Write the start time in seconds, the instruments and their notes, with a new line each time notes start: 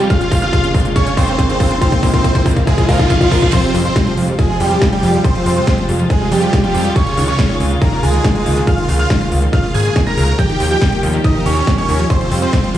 Already playing: string section G#3 F4, riser
0.10 synth pluck C#3, string section C#3 A#3, supersaw synth F4 F5, grand piano F6, kick, closed hi-hat
0.21 synth pluck G#3, closed hi-hat
0.31 analog synth bass C#2, synth pluck C#3, kick, open hi-hat
0.42 synth pluck C#3, supersaw synth F4 F5, grand piano F6, closed hi-hat
0.53 synth pluck G#3, kick, closed hi-hat
0.64 synth pluck C#3, closed hi-hat
0.74 analog synth bass C#2, synth pluck C#3, kick, open hi-hat
0.80 closed hi-hat
0.85 synth pluck G#3, closed hi-hat
0.96 synth pluck C#3, supersaw synth C#4 C#5, grand piano C#6, kick, closed hi-hat
1.06 synth pluck C#3, closed hi-hat
1.17 analog synth bass C#2, synth pluck G#3, supersaw synth C4 C5, grand piano C6, kick, open hi-hat
1.28 synth pluck C#3, closed hi-hat
1.39 synth pluck C#3, kick, closed hi-hat
1.49 synth pluck G#3, supersaw synth C4 C5, grand piano C6, closed hi-hat
1.60 analog synth bass C#2, synth pluck C#3, kick, open hi-hat
1.71 synth pluck C#3, closed hi-hat
1.81 string section C4, supersaw synth C4 C5, synth pluck F4, grand piano C6, kick, closed hi-hat
1.92 synth pluck A#3, kick, closed hi-hat
2.03 analog synth bass A#1, synth pluck A#3, kick, open hi-hat
2.14 supersaw synth C4 C5, synth pluck F4, grand piano C6, kick, closed hi-hat
2.24 synth pluck A#3, kick, closed hi-hat
2.35 synth pluck A#3, kick, closed hi-hat
2.46 analog synth bass A#1, synth pluck F4, kick, open hi-hat
2.51 closed hi-hat
2.56 synth pluck A#3, kick, closed hi-hat
2.67 supersaw synth G#3 G#4, synth pluck A#3, grand piano G#5, kick, closed hi-hat, reverse cymbal
2.78 synth pluck F4, kick, closed hi-hat
2.89 analog synth bass G#1, supersaw synth F3 F4, synth pluck A#4, grand piano F5, kick, open hi-hat
2.99 synth pluck D#4, kick, closed hi-hat
3.10 synth pluck C#4, kick, closed hi-hat
3.21 synth pluck F3, supersaw synth F3 F4, grand piano F5, kick, closed hi-hat
3.31 analog synth bass A#1, synth pluck A#4, kick, open hi-hat
3.42 synth pluck F4, kick, closed hi-hat
3.53 string section C3 F3 G#3 F4, synth pluck F3, supersaw synth C4 C5, grand piano C6, kick, closed hi-hat, crash, impact
3.64 synth pluck G3, closed hi-hat
3.74 analog synth bass F2, synth pluck F3, open hi-hat
3.85 synth pluck F3, supersaw synth C4 C5, grand piano C6, closed hi-hat
3.96 synth pluck G3, kick, snare, closed hi-hat
4.07 synth pluck F3, closed hi-hat
4.17 analog synth bass F2, synth pluck F3, open hi-hat
4.28 synth pluck G3, closed hi-hat
4.39 synth pluck F3, supersaw synth G#3 G#4, grand piano G#5, kick, closed hi-hat
4.49 synth pluck F3
4.60 analog synth bass F2, synth pluck G3, supersaw synth G3 G4, grand piano G5, open hi-hat
4.71 synth pluck F3, closed hi-hat
4.82 synth pluck F3, kick, snare, closed hi-hat
4.92 supersaw synth G3 G4, synth pluck G3, grand piano G5, closed hi-hat
5.03 analog synth bass F2, synth pluck F3, open hi-hat
5.14 synth pluck F3, closed hi-hat
5.24 synth pluck G3, supersaw synth C4 C5, grand piano C6, kick, closed hi-hat
5.35 synth pluck F3, closed hi-hat
5.46 analog synth bass F2, synth pluck F3, open hi-hat
5.57 synth pluck G3, supersaw synth C4 C5, grand piano C6, closed hi-hat
5.67 synth pluck F3, kick, snare, closed hi-hat
5.78 synth pluck F3, closed hi-hat
5.89 analog synth bass F2, synth pluck G3, open hi-hat
5.99 synth pluck F3, closed hi-hat
6.10 synth pluck F3, supersaw synth G#3 G#4, grand piano G#5, kick, closed hi-hat
6.21 synth pluck G3
6.31 analog synth bass F2, synth pluck F3, supersaw synth G3 G4, grand piano G5, open hi-hat
6.42 synth pluck F3, closed hi-hat
6.53 synth pluck G3, kick, snare, closed hi-hat
6.64 synth pluck F3, supersaw synth G3 G4, grand piano G5, closed hi-hat
6.74 analog synth bass F2, synth pluck F3, open hi-hat
6.85 synth pluck G3, closed hi-hat
6.96 synth pluck C#3, string section C#3 A#3, supersaw synth C#4 C#5, grand piano C#6, kick, closed hi-hat
7.07 synth pluck C#3, closed hi-hat
7.17 analog synth bass C#2, synth pluck D#3, open hi-hat
7.28 synth pluck C#3, supersaw synth C#4 C#5, grand piano C#6
7.39 synth pluck C#3, kick, snare, closed hi-hat
7.49 synth pluck D#3, closed hi-hat
7.60 analog synth bass C#2, synth pluck C#3, open hi-hat
7.71 synth pluck C#3, closed hi-hat
7.81 synth pluck D#3, supersaw synth A#3 A#4, grand piano A#5, kick, closed hi-hat
7.92 synth pluck C#3
8.03 analog synth bass C#2, synth pluck C#3, supersaw synth G#3 G#4, grand piano G#5, open hi-hat
8.14 synth pluck D#3, closed hi-hat
8.24 synth pluck C#3, kick, snare, closed hi-hat
8.35 synth pluck C#3, supersaw synth G#3 G#4, grand piano G#5, closed hi-hat
8.46 analog synth bass C#2, synth pluck D#3, open hi-hat
8.57 synth pluck C#3, closed hi-hat
8.67 synth pluck C#3, supersaw synth F4 F5, grand piano F6, kick, closed hi-hat
8.78 synth pluck D#3, closed hi-hat
8.89 analog synth bass C#2, synth pluck C#3, open hi-hat
8.99 synth pluck C#3, supersaw synth F4 F5, grand piano F6, closed hi-hat
9.10 synth pluck D#3, kick, snare, closed hi-hat
9.21 synth pluck C#3, closed hi-hat
9.32 analog synth bass C#2, synth pluck C#3, open hi-hat
9.42 synth pluck D#3, closed hi-hat
9.53 synth pluck C#3, supersaw synth F4 F5, grand piano F6, kick, closed hi-hat
9.64 synth pluck C#3
9.74 analog synth bass G#1, synth pluck D#3, supersaw synth G#4 G#5, grand piano G#6, open hi-hat
9.85 synth pluck C#3, closed hi-hat
9.96 synth pluck C#3, kick, snare, closed hi-hat
10.07 synth pluck D#3, supersaw synth A#4 A#5, grand piano A#6, closed hi-hat
10.17 analog synth bass C#2, synth pluck C#3, open hi-hat
10.28 synth pluck C#3, closed hi-hat
10.39 string section D#3 G3 A#3 G4, synth pluck F3, supersaw synth G4 G5, grand piano G6, kick, closed hi-hat
10.49 synth pluck D#3, closed hi-hat
10.60 analog synth bass D#2, synth pluck D#3, open hi-hat
10.71 synth pluck F3, supersaw synth G4 G5, grand piano G6, closed hi-hat
10.81 synth pluck D#3, kick, snare, closed hi-hat
10.92 synth pluck D#3, closed hi-hat
11.03 analog synth bass D#2, synth pluck F3, open hi-hat
11.13 synth pluck D#3, closed hi-hat
11.24 synth pluck D#3, supersaw synth D#4 D#5, grand piano D#6, kick, closed hi-hat
11.35 synth pluck F3
11.46 analog synth bass D#2, synth pluck D#3, supersaw synth C#4 C#5, grand piano C#6, open hi-hat
11.56 synth pluck D#3, closed hi-hat
11.67 synth pluck F3, kick, snare, closed hi-hat
11.78 synth pluck D#3, supersaw synth C#4 C#5, grand piano C#6, closed hi-hat
11.89 analog synth bass D#2, synth pluck D#3, open hi-hat
11.99 synth pluck F3, closed hi-hat
12.10 string section C3 F3 G#3 F4, synth pluck F3, supersaw synth C4 C5, grand piano C6, kick, closed hi-hat
12.21 synth pluck F3, closed hi-hat
12.31 analog synth bass F2, synth pluck G3, open hi-hat
12.42 synth pluck F3, supersaw synth C4 C5, grand piano C6, closed hi-hat
12.53 synth pluck F3, kick, snare, closed hi-hat
12.64 synth pluck G3, closed hi-hat
12.74 analog synth bass F2, synth pluck F3, open hi-hat